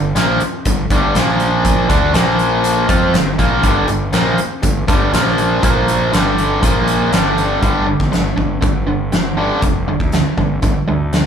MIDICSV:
0, 0, Header, 1, 6, 480
1, 0, Start_track
1, 0, Key_signature, -2, "minor"
1, 0, Tempo, 498753
1, 1592, Time_signature, 4, 2, 24, 8
1, 10840, End_track
2, 0, Start_track
2, 0, Title_t, "Overdriven electric guitar"
2, 0, Program_c, 0, 29
2, 0, Note_on_c, 0, 43, 57
2, 0, Note_on_c, 0, 50, 69
2, 112, Note_off_c, 0, 43, 0
2, 112, Note_off_c, 0, 50, 0
2, 147, Note_on_c, 0, 46, 77
2, 148, Note_on_c, 0, 53, 84
2, 154, Note_on_c, 0, 58, 87
2, 383, Note_off_c, 0, 46, 0
2, 384, Note_off_c, 0, 53, 0
2, 387, Note_off_c, 0, 58, 0
2, 637, Note_on_c, 0, 43, 57
2, 641, Note_on_c, 0, 50, 68
2, 827, Note_off_c, 0, 43, 0
2, 829, Note_off_c, 0, 50, 0
2, 876, Note_on_c, 0, 43, 91
2, 882, Note_on_c, 0, 50, 83
2, 885, Note_on_c, 0, 55, 99
2, 1107, Note_off_c, 0, 43, 0
2, 1107, Note_off_c, 0, 50, 0
2, 1111, Note_on_c, 0, 46, 77
2, 1112, Note_off_c, 0, 55, 0
2, 1118, Note_on_c, 0, 53, 86
2, 1119, Note_on_c, 0, 58, 86
2, 1815, Note_off_c, 0, 46, 0
2, 1818, Note_on_c, 0, 50, 80
2, 1820, Note_off_c, 0, 58, 0
2, 1822, Note_off_c, 0, 53, 0
2, 1823, Note_on_c, 0, 62, 97
2, 1825, Note_on_c, 0, 57, 85
2, 2049, Note_off_c, 0, 50, 0
2, 2053, Note_on_c, 0, 46, 78
2, 2055, Note_off_c, 0, 57, 0
2, 2059, Note_on_c, 0, 53, 83
2, 2060, Note_off_c, 0, 62, 0
2, 2065, Note_on_c, 0, 58, 85
2, 2763, Note_off_c, 0, 53, 0
2, 2771, Note_off_c, 0, 46, 0
2, 2775, Note_on_c, 0, 53, 89
2, 2778, Note_off_c, 0, 58, 0
2, 2778, Note_on_c, 0, 60, 93
2, 2781, Note_on_c, 0, 65, 103
2, 3014, Note_off_c, 0, 53, 0
2, 3016, Note_off_c, 0, 60, 0
2, 3017, Note_off_c, 0, 65, 0
2, 3018, Note_on_c, 0, 43, 52
2, 3020, Note_on_c, 0, 50, 58
2, 3215, Note_off_c, 0, 43, 0
2, 3215, Note_off_c, 0, 50, 0
2, 3256, Note_on_c, 0, 46, 86
2, 3259, Note_on_c, 0, 53, 86
2, 3263, Note_on_c, 0, 58, 97
2, 3494, Note_off_c, 0, 46, 0
2, 3495, Note_off_c, 0, 53, 0
2, 3497, Note_off_c, 0, 58, 0
2, 3497, Note_on_c, 0, 43, 93
2, 3500, Note_on_c, 0, 50, 94
2, 3503, Note_on_c, 0, 55, 100
2, 3720, Note_off_c, 0, 43, 0
2, 3726, Note_off_c, 0, 50, 0
2, 3732, Note_on_c, 0, 43, 56
2, 3737, Note_off_c, 0, 55, 0
2, 3738, Note_on_c, 0, 50, 60
2, 3930, Note_off_c, 0, 43, 0
2, 3933, Note_off_c, 0, 50, 0
2, 3970, Note_on_c, 0, 46, 80
2, 3977, Note_on_c, 0, 53, 89
2, 3979, Note_on_c, 0, 58, 88
2, 4210, Note_off_c, 0, 46, 0
2, 4213, Note_off_c, 0, 53, 0
2, 4214, Note_off_c, 0, 58, 0
2, 4450, Note_on_c, 0, 43, 61
2, 4453, Note_on_c, 0, 50, 59
2, 4648, Note_off_c, 0, 43, 0
2, 4650, Note_off_c, 0, 50, 0
2, 4691, Note_on_c, 0, 43, 93
2, 4695, Note_on_c, 0, 50, 86
2, 4698, Note_on_c, 0, 55, 99
2, 4929, Note_off_c, 0, 43, 0
2, 4931, Note_off_c, 0, 50, 0
2, 4933, Note_off_c, 0, 55, 0
2, 4937, Note_on_c, 0, 46, 85
2, 4939, Note_on_c, 0, 53, 88
2, 4943, Note_on_c, 0, 58, 88
2, 5402, Note_off_c, 0, 46, 0
2, 5407, Note_off_c, 0, 53, 0
2, 5414, Note_off_c, 0, 58, 0
2, 5414, Note_on_c, 0, 46, 90
2, 5419, Note_on_c, 0, 53, 92
2, 5428, Note_on_c, 0, 58, 98
2, 5889, Note_off_c, 0, 46, 0
2, 5891, Note_on_c, 0, 43, 82
2, 5892, Note_off_c, 0, 53, 0
2, 5894, Note_on_c, 0, 50, 82
2, 5896, Note_off_c, 0, 58, 0
2, 5901, Note_on_c, 0, 55, 83
2, 6366, Note_off_c, 0, 50, 0
2, 6367, Note_off_c, 0, 55, 0
2, 6368, Note_off_c, 0, 43, 0
2, 6370, Note_on_c, 0, 46, 79
2, 6371, Note_on_c, 0, 53, 85
2, 6378, Note_on_c, 0, 58, 89
2, 6847, Note_off_c, 0, 46, 0
2, 6847, Note_off_c, 0, 53, 0
2, 6851, Note_off_c, 0, 58, 0
2, 6853, Note_on_c, 0, 43, 79
2, 6858, Note_on_c, 0, 50, 81
2, 6861, Note_on_c, 0, 55, 91
2, 7320, Note_off_c, 0, 43, 0
2, 7323, Note_off_c, 0, 50, 0
2, 7326, Note_off_c, 0, 55, 0
2, 7332, Note_on_c, 0, 43, 85
2, 7335, Note_on_c, 0, 50, 87
2, 7338, Note_on_c, 0, 55, 93
2, 7561, Note_off_c, 0, 43, 0
2, 7563, Note_off_c, 0, 50, 0
2, 7564, Note_off_c, 0, 55, 0
2, 7574, Note_on_c, 0, 43, 54
2, 7578, Note_on_c, 0, 50, 72
2, 7793, Note_off_c, 0, 43, 0
2, 7794, Note_off_c, 0, 50, 0
2, 7814, Note_on_c, 0, 43, 57
2, 7816, Note_on_c, 0, 50, 72
2, 8033, Note_off_c, 0, 43, 0
2, 8034, Note_off_c, 0, 50, 0
2, 8049, Note_on_c, 0, 43, 67
2, 8053, Note_on_c, 0, 50, 70
2, 8271, Note_off_c, 0, 43, 0
2, 8273, Note_off_c, 0, 50, 0
2, 8288, Note_on_c, 0, 43, 59
2, 8295, Note_on_c, 0, 50, 64
2, 8511, Note_off_c, 0, 43, 0
2, 8514, Note_off_c, 0, 50, 0
2, 8536, Note_on_c, 0, 43, 57
2, 8539, Note_on_c, 0, 50, 64
2, 8755, Note_off_c, 0, 43, 0
2, 8757, Note_off_c, 0, 50, 0
2, 8781, Note_on_c, 0, 43, 67
2, 8783, Note_on_c, 0, 50, 68
2, 8998, Note_off_c, 0, 43, 0
2, 8999, Note_off_c, 0, 50, 0
2, 9017, Note_on_c, 0, 43, 77
2, 9018, Note_on_c, 0, 50, 85
2, 9025, Note_on_c, 0, 55, 99
2, 9246, Note_off_c, 0, 43, 0
2, 9247, Note_off_c, 0, 50, 0
2, 9250, Note_off_c, 0, 55, 0
2, 9260, Note_on_c, 0, 43, 65
2, 9263, Note_on_c, 0, 50, 72
2, 9479, Note_off_c, 0, 43, 0
2, 9480, Note_off_c, 0, 50, 0
2, 9506, Note_on_c, 0, 43, 58
2, 9508, Note_on_c, 0, 50, 62
2, 9722, Note_off_c, 0, 43, 0
2, 9723, Note_off_c, 0, 50, 0
2, 9754, Note_on_c, 0, 43, 58
2, 9759, Note_on_c, 0, 50, 69
2, 9967, Note_off_c, 0, 43, 0
2, 9969, Note_off_c, 0, 50, 0
2, 9985, Note_on_c, 0, 43, 67
2, 9986, Note_on_c, 0, 50, 73
2, 10203, Note_off_c, 0, 43, 0
2, 10204, Note_off_c, 0, 50, 0
2, 10224, Note_on_c, 0, 43, 68
2, 10228, Note_on_c, 0, 50, 72
2, 10443, Note_off_c, 0, 43, 0
2, 10445, Note_off_c, 0, 50, 0
2, 10467, Note_on_c, 0, 43, 62
2, 10472, Note_on_c, 0, 50, 68
2, 10686, Note_off_c, 0, 43, 0
2, 10688, Note_off_c, 0, 50, 0
2, 10712, Note_on_c, 0, 43, 60
2, 10724, Note_on_c, 0, 50, 67
2, 10840, Note_off_c, 0, 43, 0
2, 10840, Note_off_c, 0, 50, 0
2, 10840, End_track
3, 0, Start_track
3, 0, Title_t, "Fingered electric bass"
3, 0, Program_c, 1, 33
3, 0, Note_on_c, 1, 31, 74
3, 138, Note_off_c, 1, 31, 0
3, 152, Note_on_c, 1, 34, 79
3, 376, Note_off_c, 1, 34, 0
3, 629, Note_on_c, 1, 31, 80
3, 854, Note_off_c, 1, 31, 0
3, 867, Note_on_c, 1, 31, 77
3, 1093, Note_off_c, 1, 31, 0
3, 1109, Note_on_c, 1, 34, 81
3, 1791, Note_off_c, 1, 34, 0
3, 1826, Note_on_c, 1, 38, 89
3, 2051, Note_off_c, 1, 38, 0
3, 2060, Note_on_c, 1, 34, 82
3, 2745, Note_off_c, 1, 34, 0
3, 2778, Note_on_c, 1, 41, 83
3, 3006, Note_off_c, 1, 41, 0
3, 3020, Note_on_c, 1, 31, 74
3, 3246, Note_off_c, 1, 31, 0
3, 3259, Note_on_c, 1, 34, 80
3, 3486, Note_off_c, 1, 34, 0
3, 3495, Note_on_c, 1, 31, 91
3, 3723, Note_off_c, 1, 31, 0
3, 3742, Note_on_c, 1, 31, 75
3, 3966, Note_off_c, 1, 31, 0
3, 3980, Note_on_c, 1, 34, 80
3, 4205, Note_off_c, 1, 34, 0
3, 4457, Note_on_c, 1, 31, 76
3, 4683, Note_off_c, 1, 31, 0
3, 4702, Note_on_c, 1, 31, 83
3, 4925, Note_off_c, 1, 31, 0
3, 4938, Note_on_c, 1, 34, 92
3, 5385, Note_off_c, 1, 34, 0
3, 5418, Note_on_c, 1, 34, 96
3, 5865, Note_off_c, 1, 34, 0
3, 5897, Note_on_c, 1, 31, 88
3, 6344, Note_off_c, 1, 31, 0
3, 6377, Note_on_c, 1, 34, 92
3, 6824, Note_off_c, 1, 34, 0
3, 6852, Note_on_c, 1, 31, 93
3, 7301, Note_off_c, 1, 31, 0
3, 7336, Note_on_c, 1, 31, 97
3, 7652, Note_off_c, 1, 31, 0
3, 7697, Note_on_c, 1, 31, 90
3, 8013, Note_off_c, 1, 31, 0
3, 8060, Note_on_c, 1, 31, 79
3, 8270, Note_off_c, 1, 31, 0
3, 8297, Note_on_c, 1, 31, 93
3, 9140, Note_off_c, 1, 31, 0
3, 9261, Note_on_c, 1, 29, 93
3, 9578, Note_off_c, 1, 29, 0
3, 9623, Note_on_c, 1, 38, 75
3, 9835, Note_off_c, 1, 38, 0
3, 9985, Note_on_c, 1, 31, 81
3, 10197, Note_off_c, 1, 31, 0
3, 10227, Note_on_c, 1, 31, 85
3, 10333, Note_off_c, 1, 31, 0
3, 10474, Note_on_c, 1, 38, 76
3, 10789, Note_off_c, 1, 38, 0
3, 10840, End_track
4, 0, Start_track
4, 0, Title_t, "Muted fingered electric bass strokes"
4, 392, Note_on_c, 9, 29, 41
4, 488, Note_off_c, 9, 29, 0
4, 4223, Note_on_c, 9, 29, 42
4, 4319, Note_off_c, 9, 29, 0
4, 10840, End_track
5, 0, Start_track
5, 0, Title_t, "Muted overdriven electric guitar strokes"
5, 386, Note_on_c, 9, 29, 57
5, 483, Note_off_c, 9, 29, 0
5, 4214, Note_on_c, 9, 29, 58
5, 4310, Note_off_c, 9, 29, 0
5, 10840, End_track
6, 0, Start_track
6, 0, Title_t, "Drums"
6, 151, Note_on_c, 9, 42, 76
6, 162, Note_on_c, 9, 38, 99
6, 247, Note_off_c, 9, 42, 0
6, 258, Note_off_c, 9, 38, 0
6, 387, Note_on_c, 9, 42, 59
6, 484, Note_off_c, 9, 42, 0
6, 629, Note_on_c, 9, 42, 94
6, 631, Note_on_c, 9, 36, 88
6, 725, Note_off_c, 9, 42, 0
6, 728, Note_off_c, 9, 36, 0
6, 870, Note_on_c, 9, 36, 95
6, 870, Note_on_c, 9, 42, 59
6, 967, Note_off_c, 9, 36, 0
6, 967, Note_off_c, 9, 42, 0
6, 1108, Note_on_c, 9, 42, 82
6, 1119, Note_on_c, 9, 38, 106
6, 1205, Note_off_c, 9, 42, 0
6, 1215, Note_off_c, 9, 38, 0
6, 1234, Note_on_c, 9, 38, 29
6, 1330, Note_off_c, 9, 38, 0
6, 1345, Note_on_c, 9, 42, 61
6, 1441, Note_off_c, 9, 42, 0
6, 1586, Note_on_c, 9, 42, 83
6, 1587, Note_on_c, 9, 36, 92
6, 1682, Note_off_c, 9, 42, 0
6, 1683, Note_off_c, 9, 36, 0
6, 1825, Note_on_c, 9, 42, 66
6, 1826, Note_on_c, 9, 36, 102
6, 1921, Note_off_c, 9, 42, 0
6, 1922, Note_off_c, 9, 36, 0
6, 2063, Note_on_c, 9, 42, 88
6, 2073, Note_on_c, 9, 38, 98
6, 2159, Note_off_c, 9, 42, 0
6, 2170, Note_off_c, 9, 38, 0
6, 2304, Note_on_c, 9, 42, 61
6, 2400, Note_off_c, 9, 42, 0
6, 2541, Note_on_c, 9, 42, 97
6, 2638, Note_off_c, 9, 42, 0
6, 2780, Note_on_c, 9, 42, 61
6, 2782, Note_on_c, 9, 36, 96
6, 2876, Note_off_c, 9, 42, 0
6, 2878, Note_off_c, 9, 36, 0
6, 3023, Note_on_c, 9, 42, 79
6, 3033, Note_on_c, 9, 38, 95
6, 3119, Note_off_c, 9, 42, 0
6, 3130, Note_off_c, 9, 38, 0
6, 3261, Note_on_c, 9, 36, 86
6, 3262, Note_on_c, 9, 42, 56
6, 3358, Note_off_c, 9, 36, 0
6, 3358, Note_off_c, 9, 42, 0
6, 3497, Note_on_c, 9, 42, 79
6, 3500, Note_on_c, 9, 36, 101
6, 3593, Note_off_c, 9, 42, 0
6, 3596, Note_off_c, 9, 36, 0
6, 3733, Note_on_c, 9, 42, 62
6, 3829, Note_off_c, 9, 42, 0
6, 3972, Note_on_c, 9, 42, 76
6, 3983, Note_on_c, 9, 38, 99
6, 4068, Note_off_c, 9, 42, 0
6, 4079, Note_off_c, 9, 38, 0
6, 4216, Note_on_c, 9, 42, 60
6, 4313, Note_off_c, 9, 42, 0
6, 4454, Note_on_c, 9, 42, 81
6, 4459, Note_on_c, 9, 36, 91
6, 4550, Note_off_c, 9, 42, 0
6, 4555, Note_off_c, 9, 36, 0
6, 4699, Note_on_c, 9, 42, 62
6, 4700, Note_on_c, 9, 36, 102
6, 4796, Note_off_c, 9, 42, 0
6, 4797, Note_off_c, 9, 36, 0
6, 4943, Note_on_c, 9, 42, 86
6, 4953, Note_on_c, 9, 38, 97
6, 5039, Note_off_c, 9, 42, 0
6, 5049, Note_off_c, 9, 38, 0
6, 5075, Note_on_c, 9, 38, 31
6, 5171, Note_off_c, 9, 38, 0
6, 5180, Note_on_c, 9, 42, 60
6, 5276, Note_off_c, 9, 42, 0
6, 5419, Note_on_c, 9, 42, 90
6, 5420, Note_on_c, 9, 36, 104
6, 5515, Note_off_c, 9, 42, 0
6, 5516, Note_off_c, 9, 36, 0
6, 5662, Note_on_c, 9, 42, 66
6, 5758, Note_off_c, 9, 42, 0
6, 5903, Note_on_c, 9, 42, 79
6, 5914, Note_on_c, 9, 38, 96
6, 5999, Note_off_c, 9, 42, 0
6, 6010, Note_off_c, 9, 38, 0
6, 6143, Note_on_c, 9, 42, 60
6, 6240, Note_off_c, 9, 42, 0
6, 6379, Note_on_c, 9, 36, 103
6, 6380, Note_on_c, 9, 42, 93
6, 6475, Note_off_c, 9, 36, 0
6, 6477, Note_off_c, 9, 42, 0
6, 6618, Note_on_c, 9, 42, 61
6, 6714, Note_off_c, 9, 42, 0
6, 6858, Note_on_c, 9, 42, 84
6, 6869, Note_on_c, 9, 38, 104
6, 6954, Note_off_c, 9, 42, 0
6, 6965, Note_off_c, 9, 38, 0
6, 7102, Note_on_c, 9, 42, 59
6, 7198, Note_off_c, 9, 42, 0
6, 7339, Note_on_c, 9, 36, 101
6, 7339, Note_on_c, 9, 42, 55
6, 7435, Note_off_c, 9, 36, 0
6, 7435, Note_off_c, 9, 42, 0
6, 7699, Note_on_c, 9, 36, 80
6, 7709, Note_on_c, 9, 38, 29
6, 7795, Note_off_c, 9, 36, 0
6, 7806, Note_off_c, 9, 38, 0
6, 7824, Note_on_c, 9, 42, 51
6, 7835, Note_on_c, 9, 38, 98
6, 7920, Note_off_c, 9, 42, 0
6, 7931, Note_off_c, 9, 38, 0
6, 8061, Note_on_c, 9, 36, 68
6, 8157, Note_off_c, 9, 36, 0
6, 8300, Note_on_c, 9, 36, 107
6, 8300, Note_on_c, 9, 42, 54
6, 8396, Note_off_c, 9, 36, 0
6, 8396, Note_off_c, 9, 42, 0
6, 8781, Note_on_c, 9, 42, 57
6, 8791, Note_on_c, 9, 38, 100
6, 8877, Note_off_c, 9, 42, 0
6, 8888, Note_off_c, 9, 38, 0
6, 9262, Note_on_c, 9, 36, 92
6, 9262, Note_on_c, 9, 42, 60
6, 9358, Note_off_c, 9, 42, 0
6, 9359, Note_off_c, 9, 36, 0
6, 9625, Note_on_c, 9, 36, 74
6, 9721, Note_off_c, 9, 36, 0
6, 9742, Note_on_c, 9, 42, 55
6, 9753, Note_on_c, 9, 38, 88
6, 9839, Note_off_c, 9, 42, 0
6, 9849, Note_off_c, 9, 38, 0
6, 9986, Note_on_c, 9, 36, 64
6, 10082, Note_off_c, 9, 36, 0
6, 10225, Note_on_c, 9, 42, 59
6, 10228, Note_on_c, 9, 36, 102
6, 10321, Note_off_c, 9, 42, 0
6, 10325, Note_off_c, 9, 36, 0
6, 10709, Note_on_c, 9, 42, 55
6, 10720, Note_on_c, 9, 38, 100
6, 10805, Note_off_c, 9, 42, 0
6, 10816, Note_off_c, 9, 38, 0
6, 10840, End_track
0, 0, End_of_file